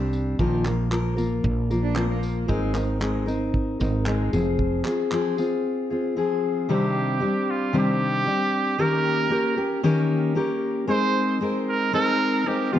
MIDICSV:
0, 0, Header, 1, 6, 480
1, 0, Start_track
1, 0, Tempo, 524476
1, 362, Time_signature, 4, 2, 24, 8
1, 11705, End_track
2, 0, Start_track
2, 0, Title_t, "Trumpet"
2, 0, Program_c, 0, 56
2, 6143, Note_on_c, 0, 67, 96
2, 6869, Note_on_c, 0, 65, 86
2, 6883, Note_off_c, 0, 67, 0
2, 7095, Note_off_c, 0, 65, 0
2, 7120, Note_on_c, 0, 67, 109
2, 8068, Note_on_c, 0, 70, 112
2, 8081, Note_off_c, 0, 67, 0
2, 9014, Note_off_c, 0, 70, 0
2, 9973, Note_on_c, 0, 72, 119
2, 10413, Note_off_c, 0, 72, 0
2, 10695, Note_on_c, 0, 70, 109
2, 10911, Note_off_c, 0, 70, 0
2, 10932, Note_on_c, 0, 70, 124
2, 11413, Note_on_c, 0, 67, 101
2, 11427, Note_off_c, 0, 70, 0
2, 11649, Note_on_c, 0, 65, 99
2, 11663, Note_off_c, 0, 67, 0
2, 11705, Note_off_c, 0, 65, 0
2, 11705, End_track
3, 0, Start_track
3, 0, Title_t, "Steel-string acoustic guitar"
3, 0, Program_c, 1, 25
3, 0, Note_on_c, 1, 55, 66
3, 0, Note_on_c, 1, 60, 71
3, 0, Note_on_c, 1, 62, 64
3, 0, Note_on_c, 1, 67, 72
3, 355, Note_on_c, 1, 46, 87
3, 357, Note_off_c, 1, 55, 0
3, 359, Note_off_c, 1, 60, 0
3, 359, Note_on_c, 1, 51, 84
3, 361, Note_on_c, 1, 53, 87
3, 363, Note_on_c, 1, 58, 87
3, 364, Note_off_c, 1, 62, 0
3, 366, Note_off_c, 1, 67, 0
3, 369, Note_on_c, 1, 65, 99
3, 370, Note_on_c, 1, 70, 86
3, 590, Note_off_c, 1, 70, 0
3, 598, Note_off_c, 1, 46, 0
3, 600, Note_off_c, 1, 51, 0
3, 600, Note_off_c, 1, 65, 0
3, 601, Note_off_c, 1, 53, 0
3, 601, Note_on_c, 1, 70, 52
3, 602, Note_off_c, 1, 58, 0
3, 611, Note_on_c, 1, 65, 45
3, 615, Note_on_c, 1, 58, 45
3, 621, Note_on_c, 1, 53, 49
3, 820, Note_off_c, 1, 53, 0
3, 824, Note_off_c, 1, 58, 0
3, 831, Note_on_c, 1, 53, 68
3, 834, Note_off_c, 1, 65, 0
3, 835, Note_on_c, 1, 58, 72
3, 839, Note_off_c, 1, 70, 0
3, 845, Note_on_c, 1, 65, 69
3, 850, Note_on_c, 1, 70, 74
3, 1056, Note_off_c, 1, 70, 0
3, 1062, Note_off_c, 1, 65, 0
3, 1067, Note_on_c, 1, 70, 61
3, 1068, Note_off_c, 1, 58, 0
3, 1073, Note_on_c, 1, 65, 54
3, 1074, Note_off_c, 1, 53, 0
3, 1079, Note_on_c, 1, 58, 50
3, 1085, Note_on_c, 1, 53, 46
3, 1553, Note_off_c, 1, 65, 0
3, 1557, Note_off_c, 1, 70, 0
3, 1560, Note_on_c, 1, 70, 60
3, 1563, Note_off_c, 1, 53, 0
3, 1564, Note_on_c, 1, 65, 50
3, 1567, Note_off_c, 1, 58, 0
3, 1571, Note_on_c, 1, 58, 49
3, 1577, Note_on_c, 1, 53, 49
3, 1779, Note_off_c, 1, 53, 0
3, 1786, Note_off_c, 1, 58, 0
3, 1790, Note_on_c, 1, 53, 61
3, 1793, Note_off_c, 1, 65, 0
3, 1797, Note_on_c, 1, 58, 68
3, 1798, Note_off_c, 1, 70, 0
3, 1804, Note_on_c, 1, 65, 69
3, 1809, Note_on_c, 1, 70, 73
3, 2267, Note_off_c, 1, 53, 0
3, 2268, Note_off_c, 1, 70, 0
3, 2270, Note_off_c, 1, 58, 0
3, 2270, Note_on_c, 1, 56, 87
3, 2271, Note_off_c, 1, 65, 0
3, 2274, Note_on_c, 1, 60, 89
3, 2275, Note_on_c, 1, 63, 89
3, 2279, Note_on_c, 1, 70, 102
3, 2494, Note_off_c, 1, 70, 0
3, 2503, Note_off_c, 1, 63, 0
3, 2505, Note_on_c, 1, 70, 56
3, 2514, Note_on_c, 1, 63, 51
3, 2515, Note_off_c, 1, 60, 0
3, 2516, Note_off_c, 1, 56, 0
3, 2526, Note_on_c, 1, 60, 44
3, 2743, Note_off_c, 1, 60, 0
3, 2747, Note_on_c, 1, 56, 72
3, 2749, Note_off_c, 1, 63, 0
3, 2753, Note_off_c, 1, 70, 0
3, 2754, Note_on_c, 1, 60, 67
3, 2760, Note_on_c, 1, 63, 70
3, 2764, Note_on_c, 1, 70, 72
3, 2973, Note_off_c, 1, 70, 0
3, 2982, Note_off_c, 1, 63, 0
3, 2984, Note_on_c, 1, 70, 56
3, 2992, Note_off_c, 1, 60, 0
3, 2993, Note_on_c, 1, 63, 54
3, 2994, Note_off_c, 1, 56, 0
3, 3003, Note_on_c, 1, 60, 47
3, 3464, Note_off_c, 1, 70, 0
3, 3475, Note_on_c, 1, 70, 55
3, 3477, Note_off_c, 1, 63, 0
3, 3486, Note_on_c, 1, 63, 50
3, 3493, Note_off_c, 1, 60, 0
3, 3496, Note_on_c, 1, 60, 44
3, 3715, Note_off_c, 1, 60, 0
3, 3715, Note_off_c, 1, 63, 0
3, 3718, Note_off_c, 1, 70, 0
3, 3719, Note_on_c, 1, 56, 70
3, 3726, Note_on_c, 1, 60, 68
3, 3726, Note_on_c, 1, 63, 75
3, 3732, Note_on_c, 1, 70, 67
3, 3958, Note_off_c, 1, 70, 0
3, 3959, Note_off_c, 1, 60, 0
3, 3960, Note_off_c, 1, 56, 0
3, 3962, Note_on_c, 1, 68, 73
3, 3963, Note_off_c, 1, 63, 0
3, 3967, Note_on_c, 1, 65, 62
3, 3970, Note_on_c, 1, 60, 65
3, 3976, Note_on_c, 1, 53, 59
3, 4425, Note_off_c, 1, 68, 0
3, 4436, Note_on_c, 1, 68, 51
3, 4438, Note_off_c, 1, 65, 0
3, 4449, Note_off_c, 1, 53, 0
3, 4449, Note_on_c, 1, 65, 45
3, 4451, Note_off_c, 1, 60, 0
3, 4455, Note_on_c, 1, 60, 45
3, 4679, Note_off_c, 1, 68, 0
3, 4681, Note_off_c, 1, 60, 0
3, 4681, Note_on_c, 1, 53, 64
3, 4685, Note_off_c, 1, 65, 0
3, 4692, Note_on_c, 1, 60, 70
3, 4699, Note_on_c, 1, 65, 75
3, 4701, Note_on_c, 1, 68, 74
3, 4904, Note_off_c, 1, 68, 0
3, 4915, Note_on_c, 1, 68, 54
3, 4918, Note_off_c, 1, 65, 0
3, 4921, Note_off_c, 1, 53, 0
3, 4922, Note_off_c, 1, 60, 0
3, 4929, Note_on_c, 1, 65, 51
3, 4933, Note_on_c, 1, 60, 49
3, 5391, Note_off_c, 1, 68, 0
3, 5399, Note_off_c, 1, 65, 0
3, 5402, Note_on_c, 1, 68, 52
3, 5410, Note_on_c, 1, 65, 49
3, 5417, Note_off_c, 1, 60, 0
3, 5420, Note_on_c, 1, 60, 44
3, 5633, Note_off_c, 1, 60, 0
3, 5641, Note_on_c, 1, 53, 64
3, 5642, Note_off_c, 1, 65, 0
3, 5642, Note_off_c, 1, 68, 0
3, 5644, Note_on_c, 1, 60, 69
3, 5653, Note_on_c, 1, 65, 69
3, 5656, Note_on_c, 1, 68, 73
3, 6120, Note_on_c, 1, 48, 85
3, 6121, Note_off_c, 1, 53, 0
3, 6124, Note_on_c, 1, 51, 80
3, 6126, Note_on_c, 1, 55, 85
3, 6127, Note_off_c, 1, 65, 0
3, 6128, Note_off_c, 1, 60, 0
3, 6128, Note_off_c, 1, 68, 0
3, 6131, Note_on_c, 1, 60, 83
3, 6136, Note_on_c, 1, 67, 91
3, 6137, Note_on_c, 1, 62, 85
3, 6586, Note_off_c, 1, 55, 0
3, 6588, Note_off_c, 1, 60, 0
3, 6589, Note_on_c, 1, 55, 65
3, 6592, Note_off_c, 1, 62, 0
3, 6599, Note_on_c, 1, 60, 61
3, 6601, Note_off_c, 1, 48, 0
3, 6603, Note_on_c, 1, 62, 64
3, 6606, Note_off_c, 1, 67, 0
3, 6610, Note_on_c, 1, 67, 65
3, 6630, Note_off_c, 1, 51, 0
3, 7074, Note_off_c, 1, 60, 0
3, 7075, Note_on_c, 1, 48, 85
3, 7076, Note_on_c, 1, 51, 88
3, 7078, Note_off_c, 1, 62, 0
3, 7079, Note_off_c, 1, 55, 0
3, 7083, Note_on_c, 1, 55, 88
3, 7085, Note_on_c, 1, 60, 80
3, 7087, Note_off_c, 1, 67, 0
3, 7089, Note_on_c, 1, 62, 88
3, 7090, Note_on_c, 1, 67, 81
3, 7552, Note_off_c, 1, 55, 0
3, 7554, Note_off_c, 1, 60, 0
3, 7556, Note_on_c, 1, 55, 56
3, 7558, Note_off_c, 1, 48, 0
3, 7560, Note_off_c, 1, 62, 0
3, 7565, Note_on_c, 1, 60, 60
3, 7571, Note_on_c, 1, 62, 65
3, 7573, Note_off_c, 1, 67, 0
3, 7577, Note_on_c, 1, 67, 70
3, 7598, Note_off_c, 1, 51, 0
3, 8036, Note_off_c, 1, 55, 0
3, 8040, Note_on_c, 1, 51, 87
3, 8040, Note_on_c, 1, 58, 80
3, 8041, Note_off_c, 1, 60, 0
3, 8043, Note_off_c, 1, 62, 0
3, 8044, Note_on_c, 1, 61, 86
3, 8047, Note_off_c, 1, 67, 0
3, 8047, Note_on_c, 1, 67, 91
3, 8050, Note_on_c, 1, 70, 84
3, 8507, Note_off_c, 1, 58, 0
3, 8507, Note_off_c, 1, 61, 0
3, 8510, Note_on_c, 1, 58, 68
3, 8516, Note_off_c, 1, 67, 0
3, 8518, Note_on_c, 1, 61, 67
3, 8527, Note_on_c, 1, 67, 77
3, 8528, Note_off_c, 1, 70, 0
3, 8532, Note_on_c, 1, 70, 77
3, 8545, Note_off_c, 1, 51, 0
3, 8737, Note_off_c, 1, 70, 0
3, 8748, Note_on_c, 1, 70, 56
3, 8750, Note_off_c, 1, 67, 0
3, 8755, Note_off_c, 1, 58, 0
3, 8759, Note_off_c, 1, 61, 0
3, 8761, Note_on_c, 1, 67, 50
3, 8770, Note_on_c, 1, 61, 44
3, 8992, Note_off_c, 1, 61, 0
3, 8994, Note_off_c, 1, 70, 0
3, 8996, Note_off_c, 1, 67, 0
3, 9000, Note_on_c, 1, 51, 93
3, 9003, Note_on_c, 1, 58, 91
3, 9003, Note_on_c, 1, 61, 98
3, 9007, Note_on_c, 1, 67, 101
3, 9011, Note_on_c, 1, 70, 105
3, 9468, Note_off_c, 1, 58, 0
3, 9470, Note_off_c, 1, 61, 0
3, 9472, Note_on_c, 1, 58, 73
3, 9476, Note_off_c, 1, 67, 0
3, 9481, Note_on_c, 1, 61, 80
3, 9487, Note_on_c, 1, 67, 80
3, 9489, Note_off_c, 1, 70, 0
3, 9492, Note_on_c, 1, 70, 78
3, 9509, Note_off_c, 1, 51, 0
3, 9949, Note_off_c, 1, 58, 0
3, 9952, Note_on_c, 1, 56, 89
3, 9956, Note_off_c, 1, 61, 0
3, 9957, Note_off_c, 1, 67, 0
3, 9957, Note_off_c, 1, 70, 0
3, 9960, Note_on_c, 1, 60, 82
3, 9961, Note_on_c, 1, 63, 79
3, 9968, Note_on_c, 1, 70, 87
3, 10430, Note_off_c, 1, 56, 0
3, 10440, Note_off_c, 1, 60, 0
3, 10441, Note_off_c, 1, 63, 0
3, 10441, Note_on_c, 1, 56, 70
3, 10444, Note_off_c, 1, 70, 0
3, 10450, Note_on_c, 1, 60, 69
3, 10453, Note_on_c, 1, 63, 71
3, 10459, Note_on_c, 1, 70, 72
3, 10908, Note_off_c, 1, 56, 0
3, 10909, Note_off_c, 1, 60, 0
3, 10916, Note_off_c, 1, 63, 0
3, 10919, Note_on_c, 1, 56, 85
3, 10920, Note_on_c, 1, 60, 93
3, 10925, Note_off_c, 1, 70, 0
3, 10927, Note_on_c, 1, 63, 94
3, 10936, Note_on_c, 1, 70, 99
3, 11392, Note_off_c, 1, 56, 0
3, 11396, Note_off_c, 1, 60, 0
3, 11403, Note_off_c, 1, 63, 0
3, 11403, Note_on_c, 1, 56, 67
3, 11407, Note_on_c, 1, 60, 62
3, 11408, Note_off_c, 1, 70, 0
3, 11413, Note_on_c, 1, 63, 73
3, 11422, Note_on_c, 1, 70, 74
3, 11642, Note_off_c, 1, 56, 0
3, 11643, Note_off_c, 1, 60, 0
3, 11646, Note_off_c, 1, 63, 0
3, 11647, Note_off_c, 1, 70, 0
3, 11651, Note_on_c, 1, 67, 72
3, 11655, Note_on_c, 1, 65, 62
3, 11656, Note_on_c, 1, 59, 60
3, 11659, Note_on_c, 1, 53, 57
3, 11663, Note_on_c, 1, 50, 58
3, 11664, Note_on_c, 1, 43, 59
3, 11705, Note_off_c, 1, 43, 0
3, 11705, Note_off_c, 1, 50, 0
3, 11705, Note_off_c, 1, 53, 0
3, 11705, Note_off_c, 1, 59, 0
3, 11705, Note_off_c, 1, 65, 0
3, 11705, Note_off_c, 1, 67, 0
3, 11705, End_track
4, 0, Start_track
4, 0, Title_t, "Cello"
4, 0, Program_c, 2, 42
4, 1670, Note_on_c, 2, 62, 77
4, 1800, Note_on_c, 2, 60, 82
4, 1813, Note_off_c, 2, 62, 0
4, 1910, Note_off_c, 2, 60, 0
4, 1915, Note_on_c, 2, 58, 76
4, 2260, Note_off_c, 2, 58, 0
4, 11705, End_track
5, 0, Start_track
5, 0, Title_t, "Fretless electric bass"
5, 0, Program_c, 3, 35
5, 0, Note_on_c, 3, 36, 98
5, 320, Note_off_c, 3, 36, 0
5, 359, Note_on_c, 3, 34, 98
5, 1283, Note_off_c, 3, 34, 0
5, 1321, Note_on_c, 3, 34, 93
5, 2244, Note_off_c, 3, 34, 0
5, 2281, Note_on_c, 3, 32, 95
5, 3444, Note_off_c, 3, 32, 0
5, 3485, Note_on_c, 3, 32, 101
5, 3926, Note_off_c, 3, 32, 0
5, 3963, Note_on_c, 3, 29, 95
5, 4406, Note_off_c, 3, 29, 0
5, 11705, End_track
6, 0, Start_track
6, 0, Title_t, "Drums"
6, 118, Note_on_c, 9, 54, 61
6, 210, Note_off_c, 9, 54, 0
6, 359, Note_on_c, 9, 36, 106
6, 451, Note_off_c, 9, 36, 0
6, 598, Note_on_c, 9, 39, 82
6, 604, Note_on_c, 9, 54, 54
6, 689, Note_off_c, 9, 39, 0
6, 695, Note_off_c, 9, 54, 0
6, 842, Note_on_c, 9, 39, 108
6, 934, Note_off_c, 9, 39, 0
6, 1081, Note_on_c, 9, 54, 60
6, 1173, Note_off_c, 9, 54, 0
6, 1320, Note_on_c, 9, 36, 110
6, 1411, Note_off_c, 9, 36, 0
6, 1561, Note_on_c, 9, 54, 58
6, 1653, Note_off_c, 9, 54, 0
6, 1792, Note_on_c, 9, 39, 110
6, 1883, Note_off_c, 9, 39, 0
6, 2041, Note_on_c, 9, 54, 65
6, 2133, Note_off_c, 9, 54, 0
6, 2282, Note_on_c, 9, 36, 103
6, 2373, Note_off_c, 9, 36, 0
6, 2515, Note_on_c, 9, 39, 89
6, 2521, Note_on_c, 9, 54, 57
6, 2607, Note_off_c, 9, 39, 0
6, 2613, Note_off_c, 9, 54, 0
6, 2763, Note_on_c, 9, 39, 120
6, 2854, Note_off_c, 9, 39, 0
6, 3004, Note_on_c, 9, 54, 60
6, 3096, Note_off_c, 9, 54, 0
6, 3240, Note_on_c, 9, 36, 99
6, 3332, Note_off_c, 9, 36, 0
6, 3481, Note_on_c, 9, 54, 62
6, 3572, Note_off_c, 9, 54, 0
6, 3718, Note_on_c, 9, 39, 104
6, 3809, Note_off_c, 9, 39, 0
6, 3963, Note_on_c, 9, 54, 62
6, 4055, Note_off_c, 9, 54, 0
6, 4201, Note_on_c, 9, 36, 96
6, 4293, Note_off_c, 9, 36, 0
6, 4437, Note_on_c, 9, 39, 84
6, 4443, Note_on_c, 9, 54, 53
6, 4529, Note_off_c, 9, 39, 0
6, 4535, Note_off_c, 9, 54, 0
6, 4683, Note_on_c, 9, 39, 114
6, 4775, Note_off_c, 9, 39, 0
6, 4925, Note_on_c, 9, 54, 62
6, 5016, Note_off_c, 9, 54, 0
6, 11705, End_track
0, 0, End_of_file